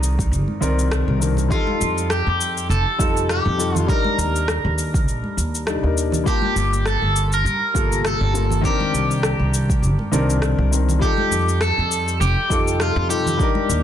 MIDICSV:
0, 0, Header, 1, 5, 480
1, 0, Start_track
1, 0, Tempo, 594059
1, 1221, Time_signature, 4, 2, 24, 8
1, 11176, End_track
2, 0, Start_track
2, 0, Title_t, "Clean electric guitar"
2, 0, Program_c, 0, 27
2, 0, Note_on_c, 0, 63, 81
2, 951, Note_off_c, 0, 63, 0
2, 1225, Note_on_c, 0, 65, 88
2, 1671, Note_off_c, 0, 65, 0
2, 1703, Note_on_c, 0, 67, 88
2, 2181, Note_off_c, 0, 67, 0
2, 2184, Note_on_c, 0, 69, 92
2, 2663, Note_off_c, 0, 69, 0
2, 2667, Note_on_c, 0, 67, 94
2, 3046, Note_off_c, 0, 67, 0
2, 3046, Note_on_c, 0, 65, 94
2, 3143, Note_off_c, 0, 65, 0
2, 3146, Note_on_c, 0, 70, 101
2, 4551, Note_off_c, 0, 70, 0
2, 5069, Note_on_c, 0, 67, 104
2, 5551, Note_off_c, 0, 67, 0
2, 5555, Note_on_c, 0, 69, 103
2, 5925, Note_off_c, 0, 69, 0
2, 5929, Note_on_c, 0, 70, 117
2, 6476, Note_off_c, 0, 70, 0
2, 6517, Note_on_c, 0, 69, 98
2, 6986, Note_off_c, 0, 69, 0
2, 6989, Note_on_c, 0, 67, 90
2, 8393, Note_off_c, 0, 67, 0
2, 8905, Note_on_c, 0, 67, 104
2, 9383, Note_off_c, 0, 67, 0
2, 9386, Note_on_c, 0, 69, 109
2, 9861, Note_off_c, 0, 69, 0
2, 9864, Note_on_c, 0, 67, 99
2, 10349, Note_off_c, 0, 67, 0
2, 10353, Note_on_c, 0, 65, 91
2, 10570, Note_off_c, 0, 65, 0
2, 10585, Note_on_c, 0, 67, 92
2, 11176, Note_off_c, 0, 67, 0
2, 11176, End_track
3, 0, Start_track
3, 0, Title_t, "Grand piano"
3, 0, Program_c, 1, 0
3, 0, Control_c, 1, 64, 127
3, 0, Note_on_c, 1, 51, 90
3, 0, Note_on_c, 1, 60, 82
3, 0, Note_on_c, 1, 70, 102
3, 0, Note_on_c, 1, 74, 82
3, 463, Note_off_c, 1, 51, 0
3, 470, Note_off_c, 1, 60, 0
3, 477, Note_off_c, 1, 74, 0
3, 483, Note_off_c, 1, 70, 0
3, 489, Note_on_c, 1, 51, 88
3, 494, Note_on_c, 1, 60, 89
3, 502, Note_on_c, 1, 74, 81
3, 508, Note_on_c, 1, 70, 102
3, 949, Note_off_c, 1, 51, 0
3, 952, Note_off_c, 1, 60, 0
3, 956, Note_off_c, 1, 74, 0
3, 959, Note_off_c, 1, 70, 0
3, 967, Note_on_c, 1, 51, 73
3, 974, Note_on_c, 1, 60, 62
3, 981, Note_on_c, 1, 62, 60
3, 988, Note_on_c, 1, 70, 76
3, 1093, Note_off_c, 1, 51, 0
3, 1097, Note_off_c, 1, 60, 0
3, 1100, Note_off_c, 1, 62, 0
3, 1104, Note_off_c, 1, 70, 0
3, 1199, Note_on_c, 1, 55, 94
3, 1213, Note_on_c, 1, 63, 88
3, 1226, Note_on_c, 1, 65, 86
3, 1231, Control_c, 1, 64, 0
3, 1239, Note_on_c, 1, 69, 106
3, 1380, Control_c, 1, 64, 127
3, 2384, Note_off_c, 1, 55, 0
3, 2391, Note_off_c, 1, 63, 0
3, 2398, Note_off_c, 1, 65, 0
3, 2404, Note_off_c, 1, 69, 0
3, 2410, Note_on_c, 1, 55, 91
3, 2416, Note_on_c, 1, 63, 87
3, 2423, Note_on_c, 1, 65, 83
3, 2431, Note_on_c, 1, 69, 99
3, 2870, Note_off_c, 1, 55, 0
3, 2873, Note_off_c, 1, 63, 0
3, 2876, Note_off_c, 1, 65, 0
3, 2880, Note_off_c, 1, 69, 0
3, 2888, Note_on_c, 1, 55, 71
3, 2895, Note_on_c, 1, 63, 64
3, 2902, Note_on_c, 1, 65, 64
3, 2909, Note_on_c, 1, 69, 81
3, 3014, Note_off_c, 1, 55, 0
3, 3017, Note_off_c, 1, 63, 0
3, 3021, Note_off_c, 1, 65, 0
3, 3024, Note_off_c, 1, 69, 0
3, 3122, Note_on_c, 1, 55, 96
3, 3134, Note_on_c, 1, 62, 84
3, 3149, Note_on_c, 1, 63, 83
3, 3152, Control_c, 1, 64, 0
3, 3162, Note_on_c, 1, 70, 105
3, 3292, Control_c, 1, 64, 127
3, 4306, Note_off_c, 1, 55, 0
3, 4312, Note_off_c, 1, 62, 0
3, 4319, Note_off_c, 1, 63, 0
3, 4326, Note_off_c, 1, 70, 0
3, 4573, Note_on_c, 1, 55, 73
3, 4579, Note_on_c, 1, 62, 68
3, 4586, Note_on_c, 1, 63, 66
3, 4591, Note_on_c, 1, 74, 76
3, 4678, Note_off_c, 1, 55, 0
3, 4681, Note_off_c, 1, 62, 0
3, 4685, Note_off_c, 1, 63, 0
3, 4687, Note_off_c, 1, 74, 0
3, 4703, Note_on_c, 1, 55, 68
3, 4711, Note_on_c, 1, 62, 62
3, 4718, Note_on_c, 1, 63, 63
3, 4724, Note_on_c, 1, 70, 77
3, 5026, Note_off_c, 1, 55, 0
3, 5034, Note_off_c, 1, 62, 0
3, 5037, Note_off_c, 1, 63, 0
3, 5038, Note_on_c, 1, 55, 91
3, 5040, Note_off_c, 1, 70, 0
3, 5054, Note_on_c, 1, 58, 87
3, 5066, Note_on_c, 1, 65, 83
3, 5070, Control_c, 1, 64, 0
3, 5082, Note_on_c, 1, 81, 100
3, 5225, Control_c, 1, 64, 127
3, 6224, Note_off_c, 1, 55, 0
3, 6232, Note_off_c, 1, 58, 0
3, 6238, Note_off_c, 1, 65, 0
3, 6246, Note_off_c, 1, 81, 0
3, 6252, Note_on_c, 1, 55, 91
3, 6258, Note_on_c, 1, 58, 81
3, 6265, Note_on_c, 1, 65, 83
3, 6271, Note_on_c, 1, 69, 97
3, 6711, Note_off_c, 1, 55, 0
3, 6714, Note_off_c, 1, 58, 0
3, 6717, Note_off_c, 1, 65, 0
3, 6720, Note_off_c, 1, 69, 0
3, 6730, Note_on_c, 1, 55, 69
3, 6737, Note_on_c, 1, 58, 64
3, 6745, Note_on_c, 1, 65, 63
3, 6750, Note_on_c, 1, 69, 71
3, 6855, Note_off_c, 1, 55, 0
3, 6858, Note_off_c, 1, 58, 0
3, 6862, Note_off_c, 1, 65, 0
3, 6865, Note_off_c, 1, 69, 0
3, 6959, Note_on_c, 1, 51, 98
3, 6973, Note_on_c, 1, 60, 82
3, 6987, Note_on_c, 1, 62, 86
3, 6991, Control_c, 1, 64, 0
3, 6999, Note_on_c, 1, 70, 105
3, 7130, Control_c, 1, 64, 127
3, 8145, Note_off_c, 1, 51, 0
3, 8151, Note_off_c, 1, 60, 0
3, 8158, Note_off_c, 1, 62, 0
3, 8165, Note_off_c, 1, 70, 0
3, 8173, Note_on_c, 1, 51, 90
3, 8179, Note_on_c, 1, 60, 88
3, 8186, Note_on_c, 1, 62, 91
3, 8194, Note_on_c, 1, 70, 98
3, 8631, Note_off_c, 1, 51, 0
3, 8634, Note_off_c, 1, 60, 0
3, 8638, Note_off_c, 1, 62, 0
3, 8642, Note_off_c, 1, 70, 0
3, 8654, Note_on_c, 1, 51, 67
3, 8661, Note_on_c, 1, 60, 65
3, 8667, Note_on_c, 1, 62, 65
3, 8673, Note_on_c, 1, 70, 75
3, 8777, Note_off_c, 1, 51, 0
3, 8780, Note_off_c, 1, 60, 0
3, 8783, Note_off_c, 1, 62, 0
3, 8787, Note_off_c, 1, 70, 0
3, 8881, Note_on_c, 1, 55, 102
3, 8895, Note_on_c, 1, 63, 85
3, 8908, Note_on_c, 1, 65, 84
3, 8912, Control_c, 1, 64, 0
3, 8923, Note_on_c, 1, 69, 105
3, 9040, Control_c, 1, 64, 127
3, 10065, Note_off_c, 1, 55, 0
3, 10072, Note_off_c, 1, 63, 0
3, 10079, Note_off_c, 1, 65, 0
3, 10086, Note_off_c, 1, 69, 0
3, 10092, Note_on_c, 1, 55, 91
3, 10099, Note_on_c, 1, 63, 84
3, 10106, Note_on_c, 1, 65, 89
3, 10112, Note_on_c, 1, 69, 107
3, 10551, Note_off_c, 1, 55, 0
3, 10554, Note_off_c, 1, 63, 0
3, 10558, Note_off_c, 1, 65, 0
3, 10561, Note_off_c, 1, 69, 0
3, 10573, Note_on_c, 1, 55, 72
3, 10579, Note_on_c, 1, 63, 60
3, 10587, Note_on_c, 1, 65, 65
3, 10592, Note_on_c, 1, 69, 77
3, 10696, Note_off_c, 1, 55, 0
3, 10699, Note_off_c, 1, 63, 0
3, 10703, Note_off_c, 1, 65, 0
3, 10706, Note_off_c, 1, 69, 0
3, 10803, Note_on_c, 1, 55, 95
3, 10817, Note_on_c, 1, 62, 87
3, 10832, Control_c, 1, 64, 0
3, 10832, Note_on_c, 1, 63, 91
3, 10846, Note_on_c, 1, 70, 108
3, 10996, Control_c, 1, 64, 127
3, 11176, Note_off_c, 1, 55, 0
3, 11176, Note_off_c, 1, 62, 0
3, 11176, Note_off_c, 1, 63, 0
3, 11176, Note_off_c, 1, 70, 0
3, 11176, End_track
4, 0, Start_track
4, 0, Title_t, "Upright bass"
4, 0, Program_c, 2, 32
4, 0, Note_on_c, 2, 36, 86
4, 255, Note_on_c, 2, 31, 89
4, 267, Note_off_c, 2, 36, 0
4, 367, Note_off_c, 2, 31, 0
4, 497, Note_on_c, 2, 36, 76
4, 833, Note_off_c, 2, 36, 0
4, 871, Note_on_c, 2, 36, 95
4, 1188, Note_off_c, 2, 36, 0
4, 1459, Note_on_c, 2, 41, 86
4, 1793, Note_off_c, 2, 41, 0
4, 1831, Note_on_c, 2, 41, 86
4, 2176, Note_on_c, 2, 29, 92
4, 2189, Note_off_c, 2, 41, 0
4, 2287, Note_off_c, 2, 29, 0
4, 2419, Note_on_c, 2, 41, 70
4, 2754, Note_off_c, 2, 41, 0
4, 2792, Note_on_c, 2, 41, 101
4, 3108, Note_off_c, 2, 41, 0
4, 3379, Note_on_c, 2, 39, 93
4, 3714, Note_off_c, 2, 39, 0
4, 3753, Note_on_c, 2, 39, 88
4, 4100, Note_off_c, 2, 39, 0
4, 4100, Note_on_c, 2, 34, 88
4, 4209, Note_off_c, 2, 34, 0
4, 4340, Note_on_c, 2, 39, 72
4, 4674, Note_off_c, 2, 39, 0
4, 4714, Note_on_c, 2, 39, 79
4, 5029, Note_off_c, 2, 39, 0
4, 5298, Note_on_c, 2, 31, 87
4, 5633, Note_off_c, 2, 31, 0
4, 5673, Note_on_c, 2, 31, 83
4, 6016, Note_on_c, 2, 43, 87
4, 6028, Note_off_c, 2, 31, 0
4, 6127, Note_off_c, 2, 43, 0
4, 6259, Note_on_c, 2, 31, 76
4, 6594, Note_off_c, 2, 31, 0
4, 6633, Note_on_c, 2, 31, 97
4, 6949, Note_off_c, 2, 31, 0
4, 7218, Note_on_c, 2, 36, 83
4, 7553, Note_off_c, 2, 36, 0
4, 7591, Note_on_c, 2, 36, 87
4, 7937, Note_on_c, 2, 31, 91
4, 7950, Note_off_c, 2, 36, 0
4, 8048, Note_off_c, 2, 31, 0
4, 8180, Note_on_c, 2, 36, 78
4, 8514, Note_off_c, 2, 36, 0
4, 8553, Note_on_c, 2, 36, 99
4, 8869, Note_off_c, 2, 36, 0
4, 9139, Note_on_c, 2, 41, 89
4, 9474, Note_off_c, 2, 41, 0
4, 9514, Note_on_c, 2, 41, 82
4, 9861, Note_on_c, 2, 29, 94
4, 9873, Note_off_c, 2, 41, 0
4, 9970, Note_off_c, 2, 29, 0
4, 10102, Note_on_c, 2, 41, 74
4, 10435, Note_off_c, 2, 41, 0
4, 10472, Note_on_c, 2, 41, 103
4, 10788, Note_off_c, 2, 41, 0
4, 11063, Note_on_c, 2, 39, 94
4, 11176, Note_off_c, 2, 39, 0
4, 11176, End_track
5, 0, Start_track
5, 0, Title_t, "Drums"
5, 27, Note_on_c, 9, 69, 75
5, 108, Note_off_c, 9, 69, 0
5, 151, Note_on_c, 9, 36, 102
5, 161, Note_on_c, 9, 69, 40
5, 232, Note_off_c, 9, 36, 0
5, 242, Note_off_c, 9, 69, 0
5, 266, Note_on_c, 9, 69, 34
5, 347, Note_off_c, 9, 69, 0
5, 387, Note_on_c, 9, 63, 59
5, 468, Note_off_c, 9, 63, 0
5, 505, Note_on_c, 9, 69, 66
5, 586, Note_off_c, 9, 69, 0
5, 638, Note_on_c, 9, 69, 42
5, 719, Note_off_c, 9, 69, 0
5, 739, Note_on_c, 9, 37, 102
5, 747, Note_on_c, 9, 69, 34
5, 820, Note_off_c, 9, 37, 0
5, 828, Note_off_c, 9, 69, 0
5, 985, Note_on_c, 9, 69, 81
5, 1066, Note_off_c, 9, 69, 0
5, 1106, Note_on_c, 9, 64, 86
5, 1118, Note_on_c, 9, 69, 43
5, 1186, Note_off_c, 9, 64, 0
5, 1199, Note_off_c, 9, 69, 0
5, 1218, Note_on_c, 9, 36, 120
5, 1224, Note_on_c, 9, 69, 31
5, 1299, Note_off_c, 9, 36, 0
5, 1304, Note_off_c, 9, 69, 0
5, 1350, Note_on_c, 9, 63, 81
5, 1431, Note_off_c, 9, 63, 0
5, 1465, Note_on_c, 9, 69, 73
5, 1546, Note_off_c, 9, 69, 0
5, 1599, Note_on_c, 9, 69, 44
5, 1680, Note_off_c, 9, 69, 0
5, 1697, Note_on_c, 9, 37, 96
5, 1705, Note_on_c, 9, 69, 33
5, 1778, Note_off_c, 9, 37, 0
5, 1785, Note_off_c, 9, 69, 0
5, 1946, Note_on_c, 9, 69, 82
5, 2027, Note_off_c, 9, 69, 0
5, 2080, Note_on_c, 9, 69, 42
5, 2161, Note_off_c, 9, 69, 0
5, 2187, Note_on_c, 9, 69, 31
5, 2268, Note_off_c, 9, 69, 0
5, 2419, Note_on_c, 9, 36, 105
5, 2427, Note_on_c, 9, 69, 73
5, 2499, Note_off_c, 9, 36, 0
5, 2507, Note_off_c, 9, 69, 0
5, 2561, Note_on_c, 9, 69, 43
5, 2642, Note_off_c, 9, 69, 0
5, 2662, Note_on_c, 9, 37, 99
5, 2669, Note_on_c, 9, 69, 34
5, 2742, Note_off_c, 9, 37, 0
5, 2750, Note_off_c, 9, 69, 0
5, 2908, Note_on_c, 9, 69, 75
5, 2989, Note_off_c, 9, 69, 0
5, 3029, Note_on_c, 9, 64, 79
5, 3041, Note_on_c, 9, 69, 44
5, 3109, Note_off_c, 9, 64, 0
5, 3122, Note_off_c, 9, 69, 0
5, 3139, Note_on_c, 9, 36, 119
5, 3148, Note_on_c, 9, 69, 29
5, 3220, Note_off_c, 9, 36, 0
5, 3229, Note_off_c, 9, 69, 0
5, 3269, Note_on_c, 9, 63, 83
5, 3350, Note_off_c, 9, 63, 0
5, 3386, Note_on_c, 9, 69, 74
5, 3467, Note_off_c, 9, 69, 0
5, 3521, Note_on_c, 9, 69, 43
5, 3602, Note_off_c, 9, 69, 0
5, 3620, Note_on_c, 9, 37, 98
5, 3628, Note_on_c, 9, 69, 32
5, 3701, Note_off_c, 9, 37, 0
5, 3709, Note_off_c, 9, 69, 0
5, 3865, Note_on_c, 9, 69, 81
5, 3946, Note_off_c, 9, 69, 0
5, 3993, Note_on_c, 9, 36, 99
5, 4001, Note_on_c, 9, 69, 42
5, 4074, Note_off_c, 9, 36, 0
5, 4081, Note_off_c, 9, 69, 0
5, 4108, Note_on_c, 9, 69, 31
5, 4188, Note_off_c, 9, 69, 0
5, 4232, Note_on_c, 9, 63, 56
5, 4313, Note_off_c, 9, 63, 0
5, 4349, Note_on_c, 9, 69, 66
5, 4430, Note_off_c, 9, 69, 0
5, 4483, Note_on_c, 9, 69, 47
5, 4563, Note_off_c, 9, 69, 0
5, 4580, Note_on_c, 9, 37, 100
5, 4588, Note_on_c, 9, 69, 31
5, 4661, Note_off_c, 9, 37, 0
5, 4668, Note_off_c, 9, 69, 0
5, 4829, Note_on_c, 9, 69, 79
5, 4909, Note_off_c, 9, 69, 0
5, 4946, Note_on_c, 9, 64, 85
5, 4960, Note_on_c, 9, 69, 45
5, 5027, Note_off_c, 9, 64, 0
5, 5041, Note_off_c, 9, 69, 0
5, 5060, Note_on_c, 9, 36, 113
5, 5067, Note_on_c, 9, 69, 30
5, 5141, Note_off_c, 9, 36, 0
5, 5147, Note_off_c, 9, 69, 0
5, 5186, Note_on_c, 9, 63, 75
5, 5266, Note_off_c, 9, 63, 0
5, 5306, Note_on_c, 9, 69, 75
5, 5387, Note_off_c, 9, 69, 0
5, 5441, Note_on_c, 9, 69, 43
5, 5522, Note_off_c, 9, 69, 0
5, 5539, Note_on_c, 9, 37, 90
5, 5547, Note_on_c, 9, 69, 32
5, 5620, Note_off_c, 9, 37, 0
5, 5628, Note_off_c, 9, 69, 0
5, 5786, Note_on_c, 9, 69, 77
5, 5867, Note_off_c, 9, 69, 0
5, 5918, Note_on_c, 9, 69, 38
5, 5999, Note_off_c, 9, 69, 0
5, 6028, Note_on_c, 9, 69, 31
5, 6109, Note_off_c, 9, 69, 0
5, 6260, Note_on_c, 9, 36, 98
5, 6267, Note_on_c, 9, 69, 70
5, 6341, Note_off_c, 9, 36, 0
5, 6348, Note_off_c, 9, 69, 0
5, 6403, Note_on_c, 9, 69, 40
5, 6483, Note_off_c, 9, 69, 0
5, 6501, Note_on_c, 9, 37, 97
5, 6509, Note_on_c, 9, 69, 34
5, 6582, Note_off_c, 9, 37, 0
5, 6590, Note_off_c, 9, 69, 0
5, 6749, Note_on_c, 9, 69, 76
5, 6830, Note_off_c, 9, 69, 0
5, 6871, Note_on_c, 9, 64, 77
5, 6882, Note_on_c, 9, 69, 43
5, 6952, Note_off_c, 9, 64, 0
5, 6962, Note_off_c, 9, 69, 0
5, 6980, Note_on_c, 9, 36, 111
5, 6988, Note_on_c, 9, 69, 29
5, 7061, Note_off_c, 9, 36, 0
5, 7069, Note_off_c, 9, 69, 0
5, 7112, Note_on_c, 9, 63, 72
5, 7193, Note_off_c, 9, 63, 0
5, 7229, Note_on_c, 9, 69, 73
5, 7310, Note_off_c, 9, 69, 0
5, 7361, Note_on_c, 9, 69, 43
5, 7442, Note_off_c, 9, 69, 0
5, 7460, Note_on_c, 9, 37, 91
5, 7467, Note_on_c, 9, 69, 34
5, 7540, Note_off_c, 9, 37, 0
5, 7548, Note_off_c, 9, 69, 0
5, 7708, Note_on_c, 9, 69, 74
5, 7789, Note_off_c, 9, 69, 0
5, 7833, Note_on_c, 9, 36, 89
5, 7839, Note_on_c, 9, 69, 39
5, 7914, Note_off_c, 9, 36, 0
5, 7920, Note_off_c, 9, 69, 0
5, 7946, Note_on_c, 9, 69, 32
5, 8026, Note_off_c, 9, 69, 0
5, 8071, Note_on_c, 9, 63, 52
5, 8152, Note_off_c, 9, 63, 0
5, 8186, Note_on_c, 9, 69, 67
5, 8267, Note_off_c, 9, 69, 0
5, 8321, Note_on_c, 9, 69, 40
5, 8402, Note_off_c, 9, 69, 0
5, 8419, Note_on_c, 9, 37, 90
5, 8427, Note_on_c, 9, 69, 32
5, 8500, Note_off_c, 9, 37, 0
5, 8507, Note_off_c, 9, 69, 0
5, 8669, Note_on_c, 9, 69, 78
5, 8750, Note_off_c, 9, 69, 0
5, 8796, Note_on_c, 9, 64, 77
5, 8803, Note_on_c, 9, 69, 42
5, 8877, Note_off_c, 9, 64, 0
5, 8884, Note_off_c, 9, 69, 0
5, 8901, Note_on_c, 9, 36, 114
5, 8908, Note_on_c, 9, 69, 28
5, 8982, Note_off_c, 9, 36, 0
5, 8989, Note_off_c, 9, 69, 0
5, 9030, Note_on_c, 9, 63, 74
5, 9111, Note_off_c, 9, 63, 0
5, 9147, Note_on_c, 9, 69, 73
5, 9227, Note_off_c, 9, 69, 0
5, 9281, Note_on_c, 9, 69, 40
5, 9362, Note_off_c, 9, 69, 0
5, 9378, Note_on_c, 9, 37, 98
5, 9386, Note_on_c, 9, 69, 33
5, 9459, Note_off_c, 9, 37, 0
5, 9467, Note_off_c, 9, 69, 0
5, 9628, Note_on_c, 9, 69, 71
5, 9708, Note_off_c, 9, 69, 0
5, 9762, Note_on_c, 9, 69, 38
5, 9842, Note_off_c, 9, 69, 0
5, 9871, Note_on_c, 9, 69, 30
5, 9951, Note_off_c, 9, 69, 0
5, 10102, Note_on_c, 9, 36, 93
5, 10109, Note_on_c, 9, 69, 62
5, 10183, Note_off_c, 9, 36, 0
5, 10190, Note_off_c, 9, 69, 0
5, 10243, Note_on_c, 9, 69, 41
5, 10324, Note_off_c, 9, 69, 0
5, 10341, Note_on_c, 9, 37, 90
5, 10349, Note_on_c, 9, 69, 31
5, 10422, Note_off_c, 9, 37, 0
5, 10429, Note_off_c, 9, 69, 0
5, 10590, Note_on_c, 9, 69, 71
5, 10670, Note_off_c, 9, 69, 0
5, 10714, Note_on_c, 9, 64, 75
5, 10723, Note_on_c, 9, 69, 40
5, 10795, Note_off_c, 9, 64, 0
5, 10803, Note_off_c, 9, 69, 0
5, 10823, Note_on_c, 9, 36, 113
5, 10828, Note_on_c, 9, 69, 31
5, 10904, Note_off_c, 9, 36, 0
5, 10909, Note_off_c, 9, 69, 0
5, 10949, Note_on_c, 9, 63, 80
5, 11030, Note_off_c, 9, 63, 0
5, 11069, Note_on_c, 9, 69, 75
5, 11150, Note_off_c, 9, 69, 0
5, 11176, End_track
0, 0, End_of_file